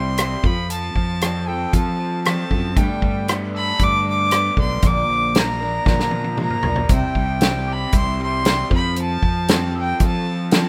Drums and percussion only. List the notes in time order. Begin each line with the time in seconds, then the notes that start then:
0.18 cross-stick, closed hi-hat
0.44 kick
0.70 closed hi-hat
0.96 kick
1.21 cross-stick, closed hi-hat
1.73 kick, closed hi-hat
2.25 cross-stick, closed hi-hat
2.51 kick
2.76 kick, closed hi-hat
3.02 kick
3.28 cross-stick, closed hi-hat
3.79 kick, closed hi-hat
4.31 cross-stick, closed hi-hat
4.57 kick
4.82 kick, closed hi-hat
5.35 snare, closed hi-hat
5.86 kick, snare
6.00 snare
6.11 high tom
6.24 high tom
6.37 mid tom
6.50 mid tom
6.63 floor tom
6.76 floor tom
6.89 kick, closed hi-hat
7.15 kick
7.41 snare, closed hi-hat
7.92 kick, closed hi-hat
8.45 snare, closed hi-hat
8.71 kick
8.96 closed hi-hat
9.23 kick
9.48 snare, closed hi-hat
10.00 kick, closed hi-hat
10.51 snare, closed hi-hat